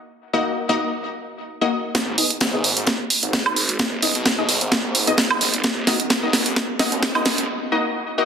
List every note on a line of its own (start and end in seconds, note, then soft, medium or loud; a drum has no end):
0.33 0.66 A#3 medium
0.33 0.66 D#4 medium
0.33 0.66 F#4 medium
0.33 0.66 D#5 medium
0.69 0.75 A#3 medium
0.69 0.75 D#4 medium
0.69 0.75 F#4 medium
0.69 0.75 D#5 loud
1.61 1.67 A#3 medium
1.61 1.67 D#4 medium
1.61 1.67 F#4 medium
1.61 1.67 D#5 medium
1.95 2.16 G#1 medium
1.95 kick loud
1.95 snare soft
1.95 closed hi-hat soft
1.95 closed hi-hat medium
2.18 2.25 B3 medium
2.18 2.25 D#4 medium
2.18 2.25 G#4 medium
2.18 2.25 D#5 loud
2.18 closed hi-hat medium
2.18 open hi-hat loud
2.30 closed hi-hat medium
2.41 2.75 G#1 medium
2.41 kick loud
2.41 snare loud
2.41 snare soft
2.41 closed hi-hat medium
2.54 2.59 B3 medium
2.54 2.59 D#4 medium
2.54 2.59 G#4 medium
2.54 2.59 D#5 loud
2.64 closed hi-hat medium
2.64 open hi-hat medium
2.77 2.98 G#1 loud
2.77 closed hi-hat medium
2.77 closed hi-hat soft
2.87 kick loud
2.87 snare soft
2.87 closed hi-hat medium
3.10 closed hi-hat medium
3.10 open hi-hat loud
3.23 3.44 G#1 medium
3.23 closed hi-hat medium
3.33 kick loud
3.33 snare medium
3.33 snare loud
3.33 closed hi-hat medium
3.46 3.78 G#1 medium
3.46 closed hi-hat soft
3.46 high woodblock medium
3.56 closed hi-hat medium
3.56 open hi-hat medium
3.69 closed hi-hat medium
3.79 4.13 F#1 medium
3.79 kick loud
3.79 snare medium
3.79 closed hi-hat medium
3.79 closed hi-hat soft
4.02 4.35 B3 medium
4.02 4.35 D#4 medium
4.02 4.35 G#4 medium
4.02 4.35 D#5 medium
4.02 closed hi-hat medium
4.02 open hi-hat loud
4.15 4.36 B1 loud
4.15 closed hi-hat medium
4.26 kick loud
4.26 snare loud
4.26 snare medium
4.26 closed hi-hat soft
4.26 closed hi-hat medium
4.38 4.59 B1 loud
4.38 4.44 B3 medium
4.38 4.44 D#4 medium
4.38 4.44 G#4 medium
4.38 4.44 D#5 loud
4.49 snare medium
4.49 closed hi-hat medium
4.49 open hi-hat medium
4.61 4.82 G#1 medium
4.61 closed hi-hat soft
4.61 closed hi-hat medium
4.72 kick loud
4.72 snare medium
4.72 closed hi-hat medium
4.84 5.16 G#1 medium
4.95 closed hi-hat medium
4.95 open hi-hat loud
5.07 5.13 B3 medium
5.07 5.13 D#4 medium
5.07 5.13 G#4 medium
5.07 5.13 D#5 loud
5.07 closed hi-hat medium
5.17 5.39 G#1 loud
5.17 kick loud
5.17 snare loud
5.17 snare medium
5.17 closed hi-hat medium
5.31 snare soft
5.31 high woodblock medium
5.41 5.62 G#1 loud
5.41 snare soft
5.41 closed hi-hat medium
5.41 open hi-hat medium
5.54 closed hi-hat medium
5.64 5.85 D#1 medium
5.64 kick loud
5.64 snare medium
5.64 closed hi-hat medium
5.64 closed hi-hat soft
5.87 5.94 A#3 medium
5.87 5.94 D#4 medium
5.87 5.94 F#4 medium
5.87 5.94 D#5 medium
5.87 snare medium
5.87 closed hi-hat medium
5.87 open hi-hat loud
6.00 closed hi-hat medium
6.10 6.44 D#1 loud
6.10 kick loud
6.10 snare loud
6.10 snare medium
6.10 closed hi-hat medium
6.23 6.28 A#3 medium
6.23 6.28 D#4 medium
6.23 6.28 F#4 medium
6.23 6.28 D#5 loud
6.33 snare medium
6.33 closed hi-hat medium
6.33 open hi-hat medium
6.46 6.67 D#1 medium
6.46 closed hi-hat medium
6.46 closed hi-hat soft
6.56 kick loud
6.56 snare medium
6.56 closed hi-hat medium
6.56 closed hi-hat soft
6.79 6.86 A#3 medium
6.79 6.86 D#4 medium
6.79 6.86 F#4 medium
6.79 6.86 D#5 medium
6.79 snare medium
6.79 closed hi-hat medium
6.79 open hi-hat loud
6.92 7.13 D#1 loud
6.92 closed hi-hat medium
7.03 kick loud
7.03 snare medium
7.03 snare loud
7.03 closed hi-hat medium
7.15 7.47 D#1 loud
7.15 7.21 A#3 medium
7.15 7.21 D#4 medium
7.15 7.21 F#4 medium
7.15 7.21 D#5 medium
7.15 closed hi-hat soft
7.15 high woodblock medium
7.25 snare medium
7.25 closed hi-hat medium
7.25 open hi-hat loud
7.38 closed hi-hat medium
7.72 7.78 A#3 medium
7.72 7.78 D#4 medium
7.72 7.78 F#4 medium
7.72 7.78 D#5 loud
8.18 8.25 A#3 medium
8.18 8.25 D#4 medium
8.18 8.25 F#4 medium
8.18 8.25 D#5 medium